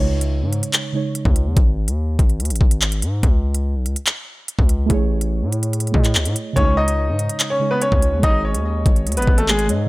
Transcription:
Already playing: 808-style bass C#2, synth keys C#3 G#3 D#4 C#5
0.21 closed hi-hat
0.42 808-style bass G#2
0.53 closed hi-hat
0.63 closed hi-hat
0.73 clap, closed hi-hat
0.92 synth keys C#3 G#3 D#4
0.96 synth keys C#5
1.15 closed hi-hat
1.25 808-style bass C#2, kick
1.36 closed hi-hat
1.46 808-style bass E2
1.57 808-style bass G#1, kick, closed hi-hat
1.88 808-style bass D#2, closed hi-hat
2.19 808-style bass G#1, kick, closed hi-hat
2.30 closed hi-hat
2.40 808-style bass D#2, closed hi-hat
2.45 closed hi-hat
2.50 808-style bass G#1, closed hi-hat
2.56 closed hi-hat
2.61 808-style bass G#1, kick
2.71 closed hi-hat
2.82 clap
2.92 closed hi-hat
3.02 808-style bass G#2, closed hi-hat
3.23 808-style bass C#2, kick, closed hi-hat
3.55 closed hi-hat
3.75 808-style bass B1
3.86 808-style bass C#2, closed hi-hat
3.96 closed hi-hat
4.07 clap, closed hi-hat
4.48 closed hi-hat
4.59 808-style bass C#2, kick
4.69 closed hi-hat
4.86 synth keys A3 E4
4.90 808-style bass A1, synth keys G#4 C#5, kick, closed hi-hat
5.21 closed hi-hat
5.42 808-style bass A2
5.52 closed hi-hat
5.63 closed hi-hat
5.73 closed hi-hat
5.80 closed hi-hat
5.87 closed hi-hat
5.92 808-style bass A2, synth keys A3 E4 G#4, kick
5.96 synth keys D#5
6.05 clap, closed hi-hat
6.15 808-style bass C#2, clap
6.25 808-style bass A2, closed hi-hat
6.36 closed hi-hat
6.53 808-style bass C#2, synth keys C#3 G#3, upright piano C#4 C#5, kick, closed hi-hat
6.58 synth keys D#4 C#5
6.77 upright piano D#4 D#5
6.88 closed hi-hat
7.09 808-style bass G#2
7.19 closed hi-hat
7.29 closed hi-hat
7.40 clap, closed hi-hat
7.50 upright piano C#4 C#5
7.59 synth keys C#3 G#3 D#4
7.63 synth keys C#5
7.71 upright piano B3 B4
7.82 upright piano C#4 C#5, closed hi-hat
7.92 808-style bass C#2, kick
8.02 closed hi-hat
8.13 808-style bass E2
8.19 808-style bass G#1, synth keys G#3 G#4, kick, closed hi-hat
8.24 upright piano D#4 D#5, synth keys C#5 D#5
8.45 upright piano C#4 C#5
8.55 808-style bass D#2, closed hi-hat
8.86 808-style bass G#1, kick, closed hi-hat
8.96 closed hi-hat
9.07 808-style bass D#2, closed hi-hat
9.12 closed hi-hat
9.17 808-style bass G#1, upright piano B3 B4, closed hi-hat
9.22 closed hi-hat
9.27 808-style bass G#1, kick
9.38 upright piano A3 A4, closed hi-hat
9.48 upright piano G#3 G#4, clap
9.59 closed hi-hat
9.67 808-style bass G#2, synth keys G#3 G#4 C#5, closed hi-hat
9.71 synth keys D#5

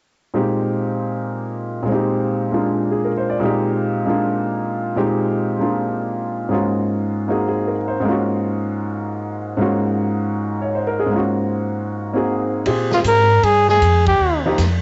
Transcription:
0.34 grand piano A#2 G#3 C4 D#4 G4
1.83 grand piano A#2 G#3
1.88 grand piano C4 D#4
1.94 grand piano G4
2.51 grand piano G#3 A#3 D4 F4
2.91 grand piano G#4
3.05 grand piano A#4
3.17 grand piano C5
3.30 grand piano D5
3.40 grand piano A#2 G#3 C4
3.44 grand piano D#4 G4
4.06 grand piano G#3 A#3 D4 F4
4.96 grand piano A#2 G#3 C4 D#4 G4
5.59 grand piano G#3 A#3 D4 F4
6.49 grand piano G#2 G#3 A#3 C#4 F4
6.54 grand piano F#4
7.28 grand piano A#3 C4 D#4 F#4 G#4
7.49 grand piano G#4
7.68 grand piano A#4
7.88 grand piano C5
8.00 grand piano G#2 G#3
8.05 grand piano A#3 C#4
8.09 grand piano F4 F#4
9.57 grand piano G#2 G#3 A#3 C#4
9.61 grand piano F4 F#4
10.62 grand piano C#5
10.75 grand piano C5
10.87 grand piano A#4
11.00 grand piano G#4
11.06 grand piano G#2 G#3
11.11 grand piano A#3 C#4
11.15 grand piano F4 F#4
12.13 grand piano A#3 C4 D#4 F#4 G#4
12.66 upright bass A#2, grand piano C4 F4 G4 G#4, ride
12.91 trumpet F4, snare
13.04 upright bass G#2, trumpet A#4, hi-hat pedal, ride
13.43 upright bass G2, trumpet G#4, ride
13.69 trumpet G#4, snare
13.81 upright bass F2, hi-hat pedal, ride
14.06 trumpet G4, kick, ride
14.19 upright bass D#2
14.46 grand piano F3 A#3 D#4 G4
14.58 upright bass F2, snare, hi-hat pedal, ride

